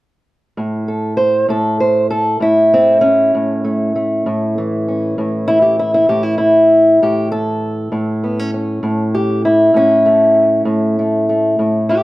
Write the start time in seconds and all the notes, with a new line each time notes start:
0.57 A2
0.88 A4
1.17 C5
1.49 A2 A4
1.80 C5
2.10 A4
2.40 A2 E4
2.73 C4
3.01 C#4
3.35 A2
3.64 A3
3.96 A3
4.26 A2
4.58 E3
4.88 C#4
5.18 A2
5.48 E4
5.62 G4
5.79 E4
5.94 E4
6.09 A2 G4
6.23 E4
6.38 E4
7.02 A2 G4
7.32 A4
7.92 A2
8.24 B3
8.39 C#4
8.54 C#4
8.83 A2
9.15 G4
9.45 E4
9.74 A2 C#4
10.06 A3
10.65 A2
10.99 A3
11.29 A3
11.59 A2
11.89 E4 G4